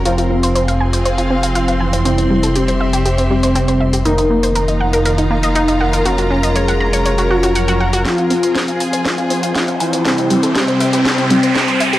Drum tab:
HH |xx-xxx-xxx-xxx-x|xx-xxx-xxx-xxx-x|xx-xxx-xxx-xxx-x|xx-xxx-xxx-xxx-x|
SD |----------------|----------------|----------------|----------------|
BD |----------------|----------------|----------------|----------------|

HH |xxoxxxoxxxoxxxox|xxoxxxoxxxoxxxoo|
SD |o---o---o---o---|o---o---o---o---|
BD |o---o---o---o---|o---o---o---o---|